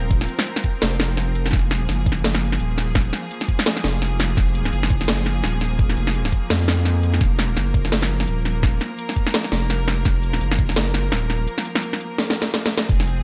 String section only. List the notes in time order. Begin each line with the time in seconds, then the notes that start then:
Already playing: F3 C4 A#4
1.53 A#3 G#4
7.22 A#4
12.90 F3 C4 G#4